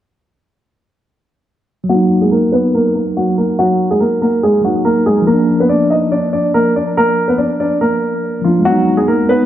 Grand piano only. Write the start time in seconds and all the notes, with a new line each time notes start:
1.89 F#3 F#4
2.21 G#3 G#4
2.31 A#3 A#4
2.52 B3 B4
2.74 A#3 A#4
2.95 A#3 A#4
3.17 F#3 F#4
3.38 A#3 A#4
3.59 F#3 F#4
3.91 G#3 G#4
4.00 A#3 A#4
4.22 A#3 A#4
4.43 G#3 G#4
4.65 F#3 F#4
4.85 A#3 A#4
5.06 G#3 G#4
5.27 A#3 A#4
5.60 B3 B4
5.69 D4 D5
5.90 D#4 D#5
6.12 D4 D5
6.33 D4 D5
6.54 A#3 A#4
6.76 D4 D5
6.97 A#3 A#4
7.28 B3 B4
7.38 D4 D5
7.60 D4 D5
7.81 A#3 A#4
8.44 F3 F4
8.65 F#3 F#4
8.97 G#3 G#4
9.08 A#3 A#4
9.29 B3 B4